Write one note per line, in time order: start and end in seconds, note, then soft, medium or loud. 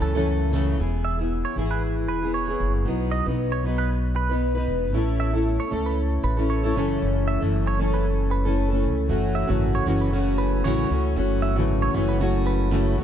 0.00 0.75 C#2 medium
0.00 0.16 F#2 medium
0.00 0.16 C#3 medium
0.00 0.15 E3 medium
0.00 0.15 A3 medium
0.00 0.14 C#4 medium
0.00 0.14 A4 medium
0.00 0.26 A4 medium
0.15 0.51 F#2 medium
0.15 0.52 C#3 medium
0.15 0.52 E3 medium
0.15 0.53 A3 medium
0.15 0.53 C#4 medium
0.15 0.53 A4 medium
0.52 0.79 F#2 medium
0.52 0.79 C#3 medium
0.52 0.77 E3 medium
0.52 0.79 A3 medium
0.52 0.79 C#4 medium
0.52 0.80 A4 medium
0.78 1.41 E1 medium
0.78 1.19 E3 medium
0.78 1.19 B3 medium
0.78 1.20 E4 medium
0.78 1.18 G#4 medium
1.05 1.18 E5 medium
1.19 1.56 B3 soft
1.19 1.57 E4 soft
1.19 1.57 G#4 soft
1.45 1.56 C#5 medium
1.56 2.09 G#1 medium
1.56 2.23 E3 soft
1.56 2.25 B3 medium
1.56 2.23 E4 medium
1.56 2.21 G#4 medium
1.71 1.82 B4 medium
2.08 2.57 E1 medium
2.08 2.33 B4 medium
2.22 2.50 B3 soft
2.22 2.48 E4 soft
2.22 2.47 G#4 medium
2.34 2.72 C#5 medium
2.48 2.85 B3 soft
2.48 2.87 E4 soft
2.48 2.86 G#4 medium
2.60 2.84 F#1 medium
2.85 3.23 B1 medium
2.85 3.26 F#3 medium
2.85 3.27 B3 medium
2.85 3.27 D#4 medium
2.85 3.25 B4 medium
3.12 3.26 D#5 medium
3.26 4.64 B1 medium
3.26 3.63 B3 soft
3.26 3.64 D#4 soft
3.26 3.64 B4 soft
3.52 3.63 C#5 medium
3.63 4.30 F#3 medium
3.63 4.31 B3 medium
3.63 4.30 D#4 medium
3.63 4.28 B4 medium
3.78 3.90 B4 medium
4.16 4.41 B4 medium
4.30 4.57 B3 soft
4.30 4.55 D#4 soft
4.30 4.54 B4 medium
4.55 4.93 B3 soft
4.55 4.94 D#4 soft
4.55 4.93 B4 medium
4.68 4.94 E1 medium
4.93 5.57 A1 medium
4.93 5.34 A3 medium
4.93 5.34 C#4 medium
4.93 5.34 E4 medium
4.93 5.32 A4 medium
5.20 5.34 E5 medium
5.33 5.70 A3 soft
5.33 5.70 C#4 soft
5.33 5.72 E4 medium
5.33 5.72 A4 medium
5.60 5.71 C#5 medium
5.71 6.20 C#2 medium
5.71 6.39 A3 medium
5.71 6.39 C#4 medium
5.71 6.38 E4 medium
5.71 6.37 A4 medium
5.86 5.97 B4 medium
6.24 6.72 A1 medium
6.24 6.49 B4 medium
6.37 6.65 A3 soft
6.37 6.64 C#4 soft
6.37 6.63 E4 medium
6.37 6.62 A4 medium
6.50 6.88 C#5 medium
6.63 6.75 A3 soft
6.63 6.76 C#4 soft
6.63 6.76 E4 medium
6.63 6.75 A4 medium
6.75 6.99 F#1 medium
6.75 7.42 F#2 medium
6.75 7.42 C#3 medium
6.75 7.43 E3 medium
6.75 7.42 A3 medium
6.75 7.41 C#4 medium
6.75 7.40 A4 medium
7.02 7.39 F#1 medium
7.28 7.41 E5 medium
7.41 8.85 F#1 medium
7.41 7.77 E3 soft
7.41 7.78 A3 soft
7.41 7.79 C#4 medium
7.41 7.79 A4 soft
7.67 7.79 C#5 medium
7.78 8.47 E3 medium
7.78 8.47 A3 medium
7.78 8.46 C#4 medium
7.78 8.45 A4 medium
7.94 8.05 B4 medium
8.31 8.56 B4 medium
8.45 8.72 E3 medium
8.45 8.71 A3 medium
8.45 8.70 C#4 medium
8.45 8.69 A4 medium
8.70 9.07 E3 soft
8.70 9.08 A3 medium
8.70 9.09 C#4 soft
8.70 9.09 A4 medium
8.84 9.07 C#2 medium
9.08 9.46 F#1 medium
9.08 9.48 E3 medium
9.08 9.47 A3 medium
9.08 9.47 C#4 medium
9.08 9.46 F#4 medium
9.35 9.49 E5 medium
9.47 9.84 G#1 medium
9.47 9.85 F#2 medium
9.47 9.85 C#3 medium
9.47 9.85 E3 medium
9.47 9.86 A3 medium
9.47 9.86 C#4 medium
9.47 9.86 F#4 medium
9.75 9.86 C#5 medium
9.86 10.60 F#1 medium
9.86 10.11 F#2 medium
9.86 10.11 C#3 medium
9.86 10.11 E3 medium
9.86 10.12 A3 medium
9.86 10.12 C#4 medium
9.86 10.12 F#4 medium
10.01 10.12 B4 medium
10.12 10.63 F#2 medium
10.12 10.63 C#3 medium
10.12 10.64 E3 medium
10.12 10.64 A3 medium
10.12 10.64 C#4 medium
10.12 10.64 F#4 medium
10.38 10.63 B4 medium
10.64 10.88 A1 medium
10.64 10.90 F#2 medium
10.64 10.91 C#3 medium
10.64 10.88 E3 medium
10.64 10.89 A3 loud
10.64 10.90 C#4 medium
10.64 10.91 F#4 loud
10.64 11.02 C#5 medium
10.89 11.14 C#2 medium
10.89 11.14 E3 medium
10.89 11.15 A3 medium
10.89 11.16 C#4 medium
10.89 11.16 F#4 medium
11.15 11.57 F#1 medium
11.15 11.56 E3 medium
11.15 11.55 A3 medium
11.15 11.55 C#4 medium
11.15 11.54 F#4 medium
11.42 11.56 E5 medium
11.56 11.91 G#1 medium
11.56 11.92 F#2 medium
11.56 11.92 C#3 medium
11.56 11.93 E3 medium
11.56 11.93 A3 medium
11.56 11.93 C#4 medium
11.56 11.93 F#4 medium
11.82 11.93 C#5 medium
11.93 12.94 F#1 medium
11.93 12.18 F#2 medium
11.93 12.18 C#3 medium
11.93 12.19 E3 medium
11.93 12.19 A3 medium
11.93 12.19 C#4 medium
11.93 12.20 F#4 medium
12.09 12.20 B4 medium
12.19 12.70 F#2 medium
12.19 12.70 C#3 medium
12.19 12.71 E3 medium
12.19 12.71 A3 medium
12.19 12.71 C#4 medium
12.19 12.71 F#4 medium
12.47 12.71 B4 medium
12.71 12.97 F#2 medium
12.71 12.97 C#3 medium
12.71 12.96 E3 medium
12.71 12.97 A3 medium
12.71 12.97 C#4 medium
12.71 12.98 F#4 medium
12.97 13.04 B1 medium
12.97 13.04 E3 medium
12.97 13.04 A3 medium
12.97 13.04 C#4 medium
12.97 13.04 F#4 medium